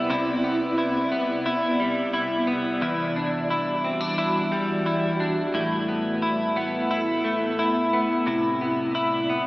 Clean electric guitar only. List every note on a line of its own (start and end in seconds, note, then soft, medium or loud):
0.00 1.79 G3 soft
0.00 0.44 B3 soft
0.10 2.82 C3 medium
0.10 0.77 E4 medium
0.44 1.11 B3 medium
0.78 1.45 E4 medium
1.12 2.47 B3 soft
1.46 2.13 E4 medium
1.80 4.51 G3 medium
2.13 2.82 E4 medium
2.47 3.16 B3 medium
2.81 5.54 E2 medium
2.81 3.50 E4 medium
3.16 3.84 D4 medium
3.50 4.18 E4 medium
3.84 4.01 C4 medium
4.01 5.19 D4 soft
4.18 4.86 E4 medium
4.52 5.61 G3 medium
4.86 5.54 E4 medium
5.20 5.61 D4 medium
5.54 8.26 A2 medium
5.54 6.22 E4 medium
5.88 6.56 B3 soft
6.22 6.90 E4 medium
6.56 7.93 B3 medium
6.91 7.59 E4 medium
7.24 8.34 A3 soft
7.59 8.27 E4 medium
7.93 8.61 B3 medium
8.26 9.47 C3 medium
8.26 8.94 E4 medium
8.61 9.29 B3 soft
8.95 9.47 E4 medium
9.30 9.47 B3 soft